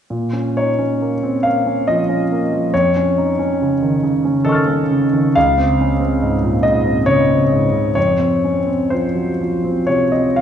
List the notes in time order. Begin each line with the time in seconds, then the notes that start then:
0.10 A#2
0.33 C#4
0.57 D#4 C#5
0.79 C#4
1.01 A#3
1.23 C4
1.43 A#3 F5
1.66 C#4
1.87 F3 D#5
2.09 C#4
2.32 A#3
2.52 F3
2.74 F2 C#5
2.97 C#4
3.18 D#4
3.39 C#4
3.62 C#3
3.83 D#3
4.03 C#3
4.25 C#4
4.45 D#3 A4 D#5
4.49 C#6 F6
4.55 A6
4.68 C#4
4.90 C#3
5.13 D#3
5.35 C#2 F5
5.58 C4
5.81 C#4
6.00 C4
6.22 G#2
6.43 A#2
6.63 G#2 D#5
6.85 C4
7.06 C#3 C#5
7.30 C4
7.52 G#2
7.73 C#3
7.95 F2 C#5
8.19 C4
8.44 C#4
8.67 C4
8.90 F3 C5
9.15 F#3
9.41 F3
9.64 C4
9.87 C3 C#5
10.12 C4 D#5
10.36 F3 F5